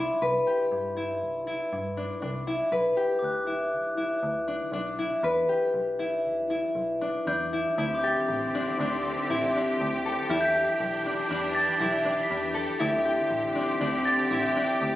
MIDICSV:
0, 0, Header, 1, 5, 480
1, 0, Start_track
1, 0, Tempo, 503356
1, 214, Time_signature, 5, 2, 24, 8
1, 14261, End_track
2, 0, Start_track
2, 0, Title_t, "Glockenspiel"
2, 0, Program_c, 0, 9
2, 0, Note_on_c, 0, 83, 40
2, 932, Note_off_c, 0, 83, 0
2, 3041, Note_on_c, 0, 86, 46
2, 3093, Note_on_c, 0, 90, 44
2, 4647, Note_off_c, 0, 86, 0
2, 4673, Note_off_c, 0, 90, 0
2, 6936, Note_on_c, 0, 91, 64
2, 7577, Note_on_c, 0, 86, 49
2, 7609, Note_off_c, 0, 91, 0
2, 7621, Note_on_c, 0, 91, 46
2, 7665, Note_on_c, 0, 93, 47
2, 9188, Note_off_c, 0, 86, 0
2, 9210, Note_off_c, 0, 91, 0
2, 9232, Note_off_c, 0, 93, 0
2, 9924, Note_on_c, 0, 91, 70
2, 9967, Note_on_c, 0, 95, 55
2, 11011, Note_on_c, 0, 93, 62
2, 11515, Note_off_c, 0, 91, 0
2, 11537, Note_off_c, 0, 95, 0
2, 11664, Note_on_c, 0, 95, 52
2, 12413, Note_off_c, 0, 93, 0
2, 12414, Note_off_c, 0, 95, 0
2, 13402, Note_on_c, 0, 93, 67
2, 14261, Note_off_c, 0, 93, 0
2, 14261, End_track
3, 0, Start_track
3, 0, Title_t, "Harp"
3, 0, Program_c, 1, 46
3, 0, Note_on_c, 1, 59, 70
3, 0, Note_on_c, 1, 62, 68
3, 0, Note_on_c, 1, 64, 66
3, 0, Note_on_c, 1, 67, 64
3, 209, Note_on_c, 1, 71, 77
3, 268, Note_off_c, 1, 59, 0
3, 282, Note_off_c, 1, 67, 0
3, 447, Note_on_c, 1, 67, 67
3, 917, Note_off_c, 1, 64, 0
3, 921, Note_on_c, 1, 64, 68
3, 1397, Note_off_c, 1, 64, 0
3, 1401, Note_on_c, 1, 64, 68
3, 1876, Note_off_c, 1, 62, 0
3, 1880, Note_on_c, 1, 62, 62
3, 2112, Note_off_c, 1, 62, 0
3, 2116, Note_on_c, 1, 62, 70
3, 2163, Note_off_c, 1, 71, 0
3, 2353, Note_off_c, 1, 64, 0
3, 2357, Note_on_c, 1, 64, 68
3, 2594, Note_on_c, 1, 71, 76
3, 2691, Note_off_c, 1, 67, 0
3, 2830, Note_on_c, 1, 67, 74
3, 3302, Note_off_c, 1, 64, 0
3, 3306, Note_on_c, 1, 64, 62
3, 3784, Note_off_c, 1, 64, 0
3, 3788, Note_on_c, 1, 64, 62
3, 4266, Note_off_c, 1, 62, 0
3, 4269, Note_on_c, 1, 62, 65
3, 4509, Note_off_c, 1, 62, 0
3, 4513, Note_on_c, 1, 62, 74
3, 4548, Note_off_c, 1, 71, 0
3, 4752, Note_off_c, 1, 64, 0
3, 4756, Note_on_c, 1, 64, 69
3, 4996, Note_on_c, 1, 71, 80
3, 5074, Note_off_c, 1, 67, 0
3, 5234, Note_on_c, 1, 67, 68
3, 5709, Note_off_c, 1, 64, 0
3, 5713, Note_on_c, 1, 64, 71
3, 6194, Note_off_c, 1, 64, 0
3, 6198, Note_on_c, 1, 64, 68
3, 6684, Note_off_c, 1, 62, 0
3, 6688, Note_on_c, 1, 62, 67
3, 6930, Note_off_c, 1, 62, 0
3, 6934, Note_on_c, 1, 62, 81
3, 6950, Note_off_c, 1, 71, 0
3, 7175, Note_off_c, 1, 64, 0
3, 7179, Note_on_c, 1, 64, 66
3, 7416, Note_off_c, 1, 64, 0
3, 7420, Note_on_c, 1, 64, 83
3, 7478, Note_off_c, 1, 67, 0
3, 7662, Note_on_c, 1, 67, 74
3, 8146, Note_off_c, 1, 62, 0
3, 8150, Note_on_c, 1, 62, 78
3, 8390, Note_off_c, 1, 62, 0
3, 8394, Note_on_c, 1, 62, 78
3, 8864, Note_off_c, 1, 64, 0
3, 8868, Note_on_c, 1, 64, 80
3, 9107, Note_off_c, 1, 62, 0
3, 9111, Note_on_c, 1, 62, 71
3, 9589, Note_on_c, 1, 69, 71
3, 9819, Note_off_c, 1, 64, 0
3, 9823, Note_on_c, 1, 64, 88
3, 9906, Note_off_c, 1, 67, 0
3, 10064, Note_on_c, 1, 67, 79
3, 10543, Note_off_c, 1, 62, 0
3, 10547, Note_on_c, 1, 62, 72
3, 10779, Note_off_c, 1, 62, 0
3, 10783, Note_on_c, 1, 62, 90
3, 11252, Note_off_c, 1, 64, 0
3, 11256, Note_on_c, 1, 64, 82
3, 11486, Note_off_c, 1, 62, 0
3, 11490, Note_on_c, 1, 62, 72
3, 11683, Note_off_c, 1, 69, 0
3, 11961, Note_on_c, 1, 69, 77
3, 12198, Note_off_c, 1, 64, 0
3, 12202, Note_on_c, 1, 64, 91
3, 12309, Note_off_c, 1, 67, 0
3, 12446, Note_on_c, 1, 67, 80
3, 12921, Note_off_c, 1, 62, 0
3, 12925, Note_on_c, 1, 62, 73
3, 13163, Note_off_c, 1, 62, 0
3, 13166, Note_on_c, 1, 62, 85
3, 13644, Note_off_c, 1, 64, 0
3, 13647, Note_on_c, 1, 64, 77
3, 13882, Note_off_c, 1, 62, 0
3, 13886, Note_on_c, 1, 62, 74
3, 14055, Note_off_c, 1, 69, 0
3, 14261, Note_off_c, 1, 62, 0
3, 14261, Note_off_c, 1, 64, 0
3, 14261, Note_off_c, 1, 67, 0
3, 14261, End_track
4, 0, Start_track
4, 0, Title_t, "String section"
4, 0, Program_c, 2, 48
4, 7431, Note_on_c, 2, 50, 78
4, 7431, Note_on_c, 2, 67, 85
4, 7432, Note_on_c, 2, 60, 73
4, 9807, Note_off_c, 2, 50, 0
4, 9808, Note_off_c, 2, 60, 0
4, 9834, Note_on_c, 2, 52, 79
4, 9836, Note_on_c, 2, 62, 72
4, 12179, Note_off_c, 2, 67, 0
4, 12193, Note_off_c, 2, 52, 0
4, 12194, Note_off_c, 2, 62, 0
4, 12213, Note_on_c, 2, 60, 69
4, 12216, Note_on_c, 2, 67, 91
4, 12220, Note_on_c, 2, 50, 80
4, 14261, Note_off_c, 2, 50, 0
4, 14261, Note_off_c, 2, 60, 0
4, 14261, Note_off_c, 2, 67, 0
4, 14261, End_track
5, 0, Start_track
5, 0, Title_t, "FM bass"
5, 0, Program_c, 3, 39
5, 211, Note_on_c, 3, 36, 104
5, 392, Note_off_c, 3, 36, 0
5, 683, Note_on_c, 3, 43, 73
5, 1166, Note_on_c, 3, 36, 89
5, 1180, Note_off_c, 3, 43, 0
5, 1525, Note_off_c, 3, 36, 0
5, 1646, Note_on_c, 3, 43, 86
5, 2004, Note_off_c, 3, 43, 0
5, 2120, Note_on_c, 3, 36, 94
5, 2480, Note_off_c, 3, 36, 0
5, 2593, Note_on_c, 3, 35, 101
5, 2775, Note_off_c, 3, 35, 0
5, 3076, Note_on_c, 3, 38, 78
5, 3548, Note_on_c, 3, 35, 85
5, 3563, Note_off_c, 3, 38, 0
5, 3913, Note_off_c, 3, 35, 0
5, 4032, Note_on_c, 3, 38, 90
5, 4395, Note_off_c, 3, 38, 0
5, 4502, Note_on_c, 3, 35, 93
5, 4870, Note_off_c, 3, 35, 0
5, 4989, Note_on_c, 3, 40, 108
5, 5173, Note_off_c, 3, 40, 0
5, 5473, Note_on_c, 3, 35, 85
5, 5960, Note_on_c, 3, 40, 89
5, 5974, Note_off_c, 3, 35, 0
5, 6326, Note_off_c, 3, 40, 0
5, 6438, Note_on_c, 3, 35, 83
5, 6810, Note_off_c, 3, 35, 0
5, 6931, Note_on_c, 3, 40, 94
5, 7299, Note_off_c, 3, 40, 0
5, 7419, Note_on_c, 3, 38, 109
5, 7784, Note_off_c, 3, 38, 0
5, 7898, Note_on_c, 3, 33, 97
5, 8265, Note_off_c, 3, 33, 0
5, 8383, Note_on_c, 3, 38, 92
5, 8748, Note_off_c, 3, 38, 0
5, 8867, Note_on_c, 3, 33, 90
5, 9228, Note_off_c, 3, 33, 0
5, 9350, Note_on_c, 3, 38, 91
5, 9709, Note_off_c, 3, 38, 0
5, 9819, Note_on_c, 3, 40, 106
5, 10183, Note_off_c, 3, 40, 0
5, 10301, Note_on_c, 3, 35, 91
5, 10663, Note_off_c, 3, 35, 0
5, 10781, Note_on_c, 3, 40, 93
5, 11141, Note_off_c, 3, 40, 0
5, 11258, Note_on_c, 3, 35, 97
5, 11617, Note_off_c, 3, 35, 0
5, 11736, Note_on_c, 3, 40, 90
5, 12095, Note_off_c, 3, 40, 0
5, 12213, Note_on_c, 3, 38, 114
5, 12573, Note_off_c, 3, 38, 0
5, 12686, Note_on_c, 3, 33, 95
5, 13048, Note_off_c, 3, 33, 0
5, 13168, Note_on_c, 3, 38, 93
5, 13530, Note_off_c, 3, 38, 0
5, 13646, Note_on_c, 3, 33, 89
5, 14007, Note_off_c, 3, 33, 0
5, 14127, Note_on_c, 3, 38, 98
5, 14261, Note_off_c, 3, 38, 0
5, 14261, End_track
0, 0, End_of_file